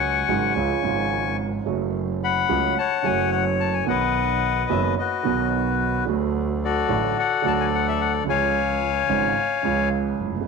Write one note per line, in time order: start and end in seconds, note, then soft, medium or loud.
0.00 0.24 C#2 medium
0.00 0.24 C#3 medium
0.00 0.24 F#3 soft
0.00 0.25 G#3 soft
0.00 0.25 F#4 medium
0.00 0.53 F#5 medium
0.00 1.36 G#5 medium
0.00 1.37 C#6 medium
0.28 0.51 G#1 medium
0.28 0.52 G#1 medium
0.28 0.52 G#2 medium
0.28 0.52 C#3 medium
0.28 0.52 F#3 medium
0.28 0.52 G#3 medium
0.28 0.52 F#4 medium
0.56 0.79 C#2 medium
0.56 0.79 C#3 medium
0.56 0.79 F3 medium
0.56 0.79 G#3 soft
0.56 0.79 F4 medium
0.82 1.62 G#1 medium
0.82 1.63 G#1 medium
0.82 1.63 G#2 medium
0.82 1.62 C#3 medium
0.82 1.63 F3 soft
0.82 1.63 G#3 soft
0.87 1.64 F4 medium
1.65 2.45 F#1 medium
1.65 2.45 F#2 medium
1.65 2.44 C#3 soft
1.65 2.45 F#3 medium
1.65 2.46 A3 soft
1.65 2.46 F#4 medium
2.24 2.78 F#5 medium
2.24 2.74 B5 medium
2.49 2.72 C#2 medium
2.49 2.73 C#2 medium
2.49 2.73 C#3 medium
2.49 2.73 F#3 medium
2.49 2.73 A3 soft
2.49 2.73 F#4 medium
2.79 3.85 C#5 medium
2.79 3.31 F#5 soft
2.79 3.06 A5 medium
3.02 3.83 F#1 medium
3.02 3.83 F#2 medium
3.02 3.82 C#3 medium
3.02 3.83 F#3 medium
3.02 3.84 A3 medium
3.02 3.30 G#5 medium
3.07 3.84 F#4 medium
3.32 3.45 F#5 medium
3.60 3.74 A5 medium
3.73 3.88 G#5 medium
3.85 4.66 B1 medium
3.85 4.66 B2 medium
3.85 4.65 D#3 medium
3.85 4.65 F#3 soft
3.85 4.66 B3 soft
3.85 4.66 F#5 medium
3.89 4.67 F#4 medium
3.89 4.94 B4 medium
3.89 4.95 D#5 soft
4.69 4.93 F#1 medium
4.69 4.93 F#2 medium
4.69 4.93 D#3 medium
4.69 4.93 F#3 medium
4.69 4.93 B3 medium
4.69 4.93 F#4 medium
4.69 4.82 E5 medium
4.98 6.05 F#4 soft
4.98 6.04 B4 soft
4.98 5.49 D#5 medium
5.23 6.03 B1 medium
5.23 6.03 B2 medium
5.23 6.02 D#3 medium
5.23 6.03 F#3 medium
5.23 6.04 B3 soft
5.23 6.04 F#4 medium
6.07 6.85 D2 medium
6.07 6.85 D3 medium
6.07 6.85 F#3 soft
6.07 6.85 A3 soft
6.07 6.86 F#4 medium
6.65 7.69 F#4 medium
6.65 7.18 A4 medium
6.65 7.18 D5 medium
6.89 7.12 A1 medium
6.89 7.12 A2 medium
6.89 7.12 D3 medium
6.89 7.12 F#3 medium
6.89 7.12 A3 medium
6.89 7.12 F#4 medium
7.19 8.24 A4 medium
7.19 8.24 D5 medium
7.19 7.46 F#5 medium
7.42 8.22 D2 medium
7.42 8.22 D3 medium
7.42 8.22 F#3 medium
7.42 8.23 A3 medium
7.42 8.23 F#4 medium
7.47 7.53 A5 medium
7.60 7.66 G#5 medium
7.74 7.87 F#5 medium
7.88 8.01 E5 medium
8.01 8.13 F#5 medium
8.25 9.05 C#2 medium
8.25 9.05 C#3 medium
8.25 9.04 F3 soft
8.25 9.05 G#3 soft
8.29 9.06 F4 medium
8.29 9.89 C#5 medium
8.29 9.89 F5 medium
8.29 9.89 G#5 medium
9.08 9.32 G#1 medium
9.08 9.32 G#2 medium
9.08 9.32 C#3 medium
9.08 9.32 F3 medium
9.08 9.32 G#3 medium
9.08 9.32 F4 medium
9.63 10.18 C#2 medium
9.63 10.43 C#2 medium
9.63 10.43 C#3 medium
9.63 10.43 F3 soft
9.63 10.43 G#3 medium
9.63 10.44 F4 medium
10.19 10.46 F#1 soft
10.26 10.33 F1 soft
10.34 10.40 F#1 soft
10.41 10.47 G1 medium